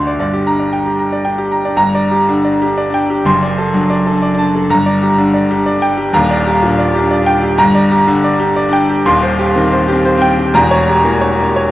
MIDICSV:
0, 0, Header, 1, 2, 480
1, 0, Start_track
1, 0, Tempo, 524017
1, 188, Time_signature, 3, 2, 24, 8
1, 1627, Tempo, 502513
1, 2587, Tempo, 481541
1, 8347, Tempo, 501253
1, 11366, End_track
2, 0, Start_track
2, 0, Title_t, "Grand piano"
2, 0, Program_c, 0, 0
2, 0, Control_c, 0, 64, 127
2, 0, Note_on_c, 0, 38, 69
2, 0, Note_on_c, 0, 62, 51
2, 0, Note_on_c, 0, 66, 64
2, 0, Note_on_c, 0, 74, 61
2, 0, Note_on_c, 0, 84, 73
2, 64, Note_off_c, 0, 74, 0
2, 64, Note_on_c, 0, 74, 62
2, 139, Note_off_c, 0, 62, 0
2, 140, Note_off_c, 0, 84, 0
2, 170, Note_off_c, 0, 74, 0
2, 173, Note_on_c, 0, 31, 69
2, 174, Note_off_c, 0, 38, 0
2, 183, Note_on_c, 0, 43, 70
2, 183, Note_on_c, 0, 74, 66
2, 207, Control_c, 0, 64, 0
2, 213, Note_off_c, 0, 66, 0
2, 306, Note_on_c, 0, 67, 57
2, 378, Note_off_c, 0, 74, 0
2, 387, Control_c, 0, 64, 127
2, 426, Note_on_c, 0, 62, 53
2, 428, Note_on_c, 0, 82, 78
2, 499, Note_off_c, 0, 67, 0
2, 544, Note_on_c, 0, 74, 51
2, 619, Note_off_c, 0, 62, 0
2, 620, Note_off_c, 0, 82, 0
2, 665, Note_on_c, 0, 79, 57
2, 739, Note_off_c, 0, 74, 0
2, 786, Note_on_c, 0, 62, 44
2, 786, Note_on_c, 0, 67, 46
2, 860, Note_off_c, 0, 79, 0
2, 905, Note_on_c, 0, 82, 58
2, 980, Note_off_c, 0, 62, 0
2, 980, Note_off_c, 0, 67, 0
2, 1030, Note_on_c, 0, 74, 57
2, 1100, Note_off_c, 0, 82, 0
2, 1142, Note_on_c, 0, 79, 63
2, 1145, Note_on_c, 0, 62, 49
2, 1221, Note_off_c, 0, 74, 0
2, 1266, Note_on_c, 0, 67, 59
2, 1338, Note_off_c, 0, 79, 0
2, 1339, Note_off_c, 0, 62, 0
2, 1390, Note_on_c, 0, 82, 59
2, 1460, Note_off_c, 0, 67, 0
2, 1509, Note_on_c, 0, 62, 54
2, 1513, Note_on_c, 0, 74, 59
2, 1581, Note_off_c, 0, 82, 0
2, 1583, Note_off_c, 0, 31, 0
2, 1588, Note_off_c, 0, 43, 0
2, 1613, Note_on_c, 0, 31, 72
2, 1622, Note_on_c, 0, 43, 81
2, 1622, Note_on_c, 0, 82, 104
2, 1627, Note_off_c, 0, 62, 0
2, 1629, Note_off_c, 0, 74, 0
2, 1646, Control_c, 0, 64, 0
2, 1791, Note_on_c, 0, 74, 76
2, 1797, Control_c, 0, 64, 127
2, 1885, Note_off_c, 0, 82, 0
2, 1950, Note_on_c, 0, 67, 68
2, 2050, Note_off_c, 0, 74, 0
2, 2114, Note_on_c, 0, 62, 62
2, 2116, Note_on_c, 0, 50, 72
2, 2208, Note_off_c, 0, 67, 0
2, 2269, Note_on_c, 0, 74, 63
2, 2305, Note_off_c, 0, 62, 0
2, 2369, Note_off_c, 0, 50, 0
2, 2433, Note_on_c, 0, 67, 66
2, 2477, Note_on_c, 0, 62, 66
2, 2523, Note_off_c, 0, 74, 0
2, 2585, Note_on_c, 0, 74, 73
2, 2664, Note_off_c, 0, 62, 0
2, 2687, Note_off_c, 0, 67, 0
2, 2706, Note_on_c, 0, 62, 72
2, 2749, Note_on_c, 0, 79, 81
2, 2846, Note_off_c, 0, 74, 0
2, 2902, Note_off_c, 0, 62, 0
2, 2908, Note_on_c, 0, 67, 64
2, 3007, Note_off_c, 0, 79, 0
2, 3023, Note_off_c, 0, 31, 0
2, 3028, Note_off_c, 0, 43, 0
2, 3056, Note_on_c, 0, 30, 79
2, 3068, Note_on_c, 0, 84, 106
2, 3069, Note_off_c, 0, 67, 0
2, 3070, Note_on_c, 0, 42, 83
2, 3089, Control_c, 0, 64, 0
2, 3230, Note_on_c, 0, 74, 70
2, 3241, Control_c, 0, 64, 127
2, 3323, Note_off_c, 0, 84, 0
2, 3388, Note_on_c, 0, 69, 65
2, 3484, Note_off_c, 0, 74, 0
2, 3542, Note_on_c, 0, 62, 65
2, 3545, Note_on_c, 0, 54, 69
2, 3643, Note_off_c, 0, 69, 0
2, 3704, Note_on_c, 0, 74, 67
2, 3737, Note_off_c, 0, 62, 0
2, 3802, Note_off_c, 0, 54, 0
2, 3864, Note_on_c, 0, 69, 65
2, 3904, Note_on_c, 0, 62, 62
2, 3962, Note_off_c, 0, 74, 0
2, 4025, Note_on_c, 0, 74, 73
2, 4099, Note_off_c, 0, 62, 0
2, 4123, Note_off_c, 0, 69, 0
2, 4147, Note_on_c, 0, 62, 78
2, 4187, Note_on_c, 0, 81, 84
2, 4284, Note_off_c, 0, 74, 0
2, 4340, Note_off_c, 0, 62, 0
2, 4349, Note_on_c, 0, 69, 65
2, 4444, Note_off_c, 0, 81, 0
2, 4461, Note_off_c, 0, 30, 0
2, 4468, Note_off_c, 0, 42, 0
2, 4494, Note_on_c, 0, 31, 84
2, 4505, Note_on_c, 0, 82, 105
2, 4507, Note_on_c, 0, 43, 90
2, 4509, Note_off_c, 0, 69, 0
2, 4527, Control_c, 0, 64, 0
2, 4658, Note_on_c, 0, 74, 71
2, 4711, Control_c, 0, 64, 127
2, 4764, Note_off_c, 0, 82, 0
2, 4821, Note_on_c, 0, 67, 69
2, 4921, Note_off_c, 0, 74, 0
2, 4978, Note_on_c, 0, 50, 73
2, 4979, Note_on_c, 0, 62, 68
2, 5082, Note_off_c, 0, 67, 0
2, 5135, Note_on_c, 0, 74, 64
2, 5177, Note_off_c, 0, 62, 0
2, 5241, Note_off_c, 0, 50, 0
2, 5302, Note_on_c, 0, 67, 70
2, 5330, Note_on_c, 0, 62, 67
2, 5398, Note_off_c, 0, 74, 0
2, 5454, Note_on_c, 0, 74, 75
2, 5532, Note_off_c, 0, 62, 0
2, 5562, Note_off_c, 0, 67, 0
2, 5575, Note_on_c, 0, 62, 73
2, 5615, Note_on_c, 0, 79, 90
2, 5719, Note_off_c, 0, 74, 0
2, 5770, Note_on_c, 0, 67, 72
2, 5775, Note_off_c, 0, 62, 0
2, 5880, Note_off_c, 0, 79, 0
2, 5904, Note_off_c, 0, 31, 0
2, 5911, Note_off_c, 0, 43, 0
2, 5923, Note_on_c, 0, 27, 93
2, 5933, Note_on_c, 0, 39, 98
2, 5934, Note_on_c, 0, 82, 107
2, 5941, Note_off_c, 0, 67, 0
2, 5967, Control_c, 0, 64, 0
2, 6101, Note_on_c, 0, 74, 78
2, 6119, Control_c, 0, 64, 127
2, 6199, Note_off_c, 0, 82, 0
2, 6258, Note_on_c, 0, 67, 72
2, 6362, Note_off_c, 0, 74, 0
2, 6417, Note_on_c, 0, 62, 72
2, 6420, Note_on_c, 0, 46, 76
2, 6520, Note_off_c, 0, 67, 0
2, 6577, Note_on_c, 0, 74, 71
2, 6615, Note_off_c, 0, 62, 0
2, 6680, Note_off_c, 0, 46, 0
2, 6735, Note_on_c, 0, 67, 77
2, 6775, Note_on_c, 0, 62, 67
2, 6837, Note_off_c, 0, 74, 0
2, 6896, Note_on_c, 0, 74, 78
2, 6972, Note_off_c, 0, 62, 0
2, 6995, Note_off_c, 0, 67, 0
2, 7012, Note_on_c, 0, 62, 80
2, 7052, Note_on_c, 0, 79, 101
2, 7156, Note_off_c, 0, 74, 0
2, 7211, Note_off_c, 0, 62, 0
2, 7215, Note_on_c, 0, 67, 70
2, 7315, Note_off_c, 0, 79, 0
2, 7333, Note_off_c, 0, 27, 0
2, 7338, Note_off_c, 0, 39, 0
2, 7362, Note_on_c, 0, 31, 95
2, 7372, Note_on_c, 0, 43, 96
2, 7372, Note_on_c, 0, 82, 117
2, 7381, Note_off_c, 0, 67, 0
2, 7403, Control_c, 0, 64, 0
2, 7535, Note_on_c, 0, 74, 79
2, 7553, Control_c, 0, 64, 127
2, 7637, Note_off_c, 0, 82, 0
2, 7701, Note_on_c, 0, 67, 78
2, 7800, Note_off_c, 0, 74, 0
2, 7862, Note_on_c, 0, 50, 89
2, 7863, Note_on_c, 0, 62, 75
2, 7962, Note_off_c, 0, 67, 0
2, 8028, Note_on_c, 0, 74, 76
2, 8059, Note_off_c, 0, 62, 0
2, 8122, Note_off_c, 0, 50, 0
2, 8183, Note_on_c, 0, 67, 77
2, 8225, Note_on_c, 0, 62, 64
2, 8284, Note_off_c, 0, 74, 0
2, 8350, Note_on_c, 0, 74, 83
2, 8417, Note_off_c, 0, 62, 0
2, 8439, Note_off_c, 0, 67, 0
2, 8467, Note_on_c, 0, 62, 84
2, 8507, Note_on_c, 0, 79, 97
2, 8599, Note_off_c, 0, 74, 0
2, 8655, Note_off_c, 0, 62, 0
2, 8666, Note_on_c, 0, 67, 70
2, 8758, Note_off_c, 0, 79, 0
2, 8770, Note_off_c, 0, 31, 0
2, 8775, Note_off_c, 0, 43, 0
2, 8819, Note_on_c, 0, 27, 97
2, 8822, Note_off_c, 0, 67, 0
2, 8825, Note_on_c, 0, 84, 115
2, 8827, Note_on_c, 0, 39, 97
2, 8841, Control_c, 0, 64, 0
2, 8984, Note_on_c, 0, 72, 84
2, 9003, Control_c, 0, 64, 127
2, 9078, Note_off_c, 0, 84, 0
2, 9142, Note_on_c, 0, 67, 82
2, 9237, Note_off_c, 0, 72, 0
2, 9301, Note_on_c, 0, 60, 79
2, 9302, Note_on_c, 0, 51, 77
2, 9397, Note_off_c, 0, 67, 0
2, 9461, Note_on_c, 0, 72, 76
2, 9492, Note_off_c, 0, 60, 0
2, 9556, Note_off_c, 0, 51, 0
2, 9614, Note_on_c, 0, 67, 86
2, 9655, Note_on_c, 0, 60, 74
2, 9714, Note_off_c, 0, 72, 0
2, 9776, Note_on_c, 0, 72, 81
2, 9846, Note_off_c, 0, 60, 0
2, 9869, Note_off_c, 0, 67, 0
2, 9893, Note_on_c, 0, 60, 83
2, 9933, Note_on_c, 0, 79, 103
2, 10029, Note_off_c, 0, 72, 0
2, 10083, Note_off_c, 0, 60, 0
2, 10091, Note_on_c, 0, 67, 72
2, 10186, Note_off_c, 0, 79, 0
2, 10211, Note_off_c, 0, 27, 0
2, 10215, Note_off_c, 0, 39, 0
2, 10242, Note_on_c, 0, 28, 97
2, 10249, Note_off_c, 0, 67, 0
2, 10250, Note_on_c, 0, 40, 98
2, 10250, Note_on_c, 0, 82, 113
2, 10268, Control_c, 0, 64, 0
2, 10405, Note_on_c, 0, 73, 90
2, 10438, Control_c, 0, 64, 127
2, 10503, Note_off_c, 0, 82, 0
2, 10565, Note_on_c, 0, 67, 76
2, 10662, Note_off_c, 0, 73, 0
2, 10725, Note_on_c, 0, 52, 72
2, 10726, Note_on_c, 0, 58, 78
2, 10824, Note_off_c, 0, 67, 0
2, 10888, Note_on_c, 0, 73, 72
2, 10922, Note_off_c, 0, 58, 0
2, 10987, Note_off_c, 0, 52, 0
2, 11054, Note_on_c, 0, 67, 66
2, 11090, Note_on_c, 0, 58, 68
2, 11153, Note_off_c, 0, 73, 0
2, 11222, Note_on_c, 0, 73, 78
2, 11295, Note_off_c, 0, 58, 0
2, 11323, Note_off_c, 0, 67, 0
2, 11366, Note_off_c, 0, 28, 0
2, 11366, Note_off_c, 0, 40, 0
2, 11366, Note_off_c, 0, 73, 0
2, 11366, End_track
0, 0, End_of_file